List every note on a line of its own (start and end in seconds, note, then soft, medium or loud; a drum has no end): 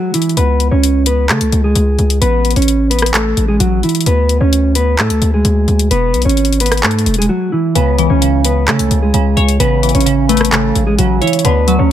0.00 0.13 F#3 medium
0.00 0.12 F#4 medium
0.14 0.36 E3 medium
0.14 0.35 E4 medium
0.14 closed hi-hat medium
0.22 closed hi-hat medium
0.29 closed hi-hat soft
0.37 0.70 C#2 loud
0.37 0.70 B3 medium
0.37 0.70 B4 medium
0.37 closed hi-hat medium
0.60 closed hi-hat medium
0.71 1.31 C#2 loud
0.71 1.04 C#4 medium
0.71 1.04 C#5 medium
0.83 closed hi-hat medium
1.06 1.28 B3 medium
1.06 1.28 B4 medium
1.06 closed hi-hat medium
1.29 1.42 C#3 loud
1.29 1.62 A3 medium
1.29 1.62 A4 medium
1.29 clap loud
1.29 closed hi-hat soft
1.41 1.52 C#2 loud
1.41 closed hi-hat medium
1.52 1.75 C#2 loud
1.52 closed hi-hat medium
1.64 2.19 G#3 medium
1.64 2.18 G#4 medium
1.75 1.98 C#2 loud
1.75 closed hi-hat medium
1.99 2.21 C#2 loud
1.99 closed hi-hat soft
2.10 closed hi-hat medium
2.21 2.55 A1 loud
2.21 2.55 B3 medium
2.21 2.54 B4 loud
2.21 closed hi-hat medium
2.45 closed hi-hat medium
2.51 closed hi-hat medium
2.56 3.34 A1 loud
2.56 2.89 C#4 medium
2.56 2.89 C#5 medium
2.56 closed hi-hat medium
2.62 closed hi-hat medium
2.68 closed hi-hat medium
2.90 3.13 B3 medium
2.90 3.12 B4 medium
2.90 closed hi-hat medium
2.99 cross-stick medium
2.99 closed hi-hat medium
3.06 closed hi-hat medium
3.14 3.47 A3 medium
3.14 3.46 A4 loud
3.14 clap loud
3.14 closed hi-hat medium
3.37 3.59 A1 loud
3.37 closed hi-hat medium
3.48 3.60 G#3 medium
3.48 3.59 G#4 medium
3.60 3.82 A1 loud
3.60 3.82 F#3 medium
3.60 3.82 F#4 medium
3.60 closed hi-hat medium
3.83 4.05 E3 medium
3.83 4.05 E4 medium
3.83 closed hi-hat soft
3.89 closed hi-hat medium
3.95 closed hi-hat medium
4.01 closed hi-hat medium
4.06 4.40 D2 loud
4.06 4.39 B3 medium
4.06 4.39 B4 medium
4.06 closed hi-hat medium
4.29 closed hi-hat medium
4.41 5.00 D2 loud
4.41 4.74 C#4 medium
4.41 4.73 C#5 medium
4.53 closed hi-hat medium
4.75 4.97 B3 medium
4.75 4.97 B4 medium
4.75 closed hi-hat medium
4.99 5.12 A2 loud
4.99 5.32 A3 medium
4.99 5.31 A4 medium
4.99 clap loud
4.99 closed hi-hat soft
5.10 5.21 D2 loud
5.10 closed hi-hat medium
5.22 5.44 D2 loud
5.22 closed hi-hat medium
5.34 5.88 G#3 medium
5.34 5.88 G#4 medium
5.45 5.67 D2 loud
5.45 closed hi-hat medium
5.68 5.90 D2 loud
5.68 closed hi-hat soft
5.79 closed hi-hat medium
5.91 6.15 E1 loud
5.91 6.24 B3 medium
5.91 6.23 B4 loud
5.91 closed hi-hat medium
6.14 6.25 B1 loud
6.14 closed hi-hat medium
6.22 6.85 G#1 loud
6.22 6.58 C#5 medium
6.22 closed hi-hat medium
6.26 6.58 C#4 medium
6.26 closed hi-hat medium
6.37 closed hi-hat medium
6.45 closed hi-hat medium
6.53 closed hi-hat medium
6.60 6.82 B3 medium
6.60 6.82 B4 medium
6.60 closed hi-hat medium
6.66 closed hi-hat medium
6.72 cross-stick medium
6.72 closed hi-hat medium
6.77 closed hi-hat soft
6.83 7.05 G#2 loud
6.83 7.16 A3 medium
6.83 7.16 A4 medium
6.83 clap loud
6.83 closed hi-hat soft
6.91 closed hi-hat medium
6.99 closed hi-hat medium
7.06 7.28 E1 loud
7.06 closed hi-hat medium
7.14 closed hi-hat medium
7.18 7.29 G#3 medium
7.18 7.29 G#4 medium
7.18 closed hi-hat medium
7.29 7.51 F#3 medium
7.29 7.51 F#4 loud
7.52 7.74 E3 medium
7.52 7.74 E4 medium
7.75 8.09 C#2 loud
7.75 8.20 C#3 medium
7.75 8.09 B3 medium
7.75 8.08 B4 medium
7.75 closed hi-hat medium
7.98 9.14 E3 medium
7.98 closed hi-hat medium
8.10 8.69 C#2 loud
8.10 8.43 C#4 medium
8.10 8.42 C#5 medium
8.22 8.67 C#3 medium
8.22 closed hi-hat medium
8.44 8.67 B3 medium
8.44 8.66 B4 medium
8.44 closed hi-hat loud
8.68 9.13 C#3 medium
8.68 8.81 C#3 loud
8.68 9.01 A3 medium
8.68 9.00 A4 medium
8.68 clap loud
8.68 closed hi-hat soft
8.79 8.90 C#2 loud
8.79 closed hi-hat medium
8.91 9.13 C#2 loud
8.91 closed hi-hat medium
9.02 9.57 G#3 medium
9.02 9.57 G#4 medium
9.14 9.36 C#2 loud
9.14 9.59 C#3 medium
9.14 closed hi-hat medium
9.37 9.59 C#2 loud
9.37 9.60 C#5 medium
9.37 closed hi-hat soft
9.48 closed hi-hat medium
9.60 9.93 A1 loud
9.60 10.05 C#3 medium
9.60 9.93 B3 medium
9.60 9.93 B4 loud
9.60 closed hi-hat medium
9.83 10.98 E3 medium
9.83 closed hi-hat medium
9.89 closed hi-hat medium
9.95 10.72 A1 loud
9.95 10.28 C#4 medium
9.95 10.27 C#5 medium
9.95 closed hi-hat medium
10.00 closed hi-hat medium
10.06 10.51 C#3 medium
10.06 closed hi-hat medium
10.29 11.45 A3 medium
10.29 10.51 B3 medium
10.29 10.51 B4 medium
10.29 closed hi-hat medium
10.37 cross-stick medium
10.37 closed hi-hat medium
10.45 closed hi-hat medium
10.52 10.97 C#3 medium
10.52 10.85 A3 medium
10.52 10.85 A4 medium
10.52 clap loud
10.52 closed hi-hat medium
10.75 10.98 A1 loud
10.75 closed hi-hat medium
10.87 10.98 G#3 medium
10.87 10.98 G#4 medium
10.98 11.21 A1 loud
10.98 11.45 C#3 medium
10.98 11.20 F#3 medium
10.98 11.20 F#4 medium
10.98 closed hi-hat medium
11.21 11.44 E3 medium
11.21 11.43 E4 medium
11.21 11.45 C#5 medium
11.21 closed hi-hat soft
11.27 closed hi-hat soft
11.33 closed hi-hat medium
11.39 closed hi-hat medium
11.45 11.78 D2 loud
11.45 11.90 D3 loud
11.45 11.78 B3 medium
11.45 11.77 B4 medium
11.45 closed hi-hat medium
11.68 11.92 F#3 medium
11.68 closed hi-hat medium
11.79 11.92 D2 loud
11.79 11.92 C#4 medium
11.79 11.92 C#5 medium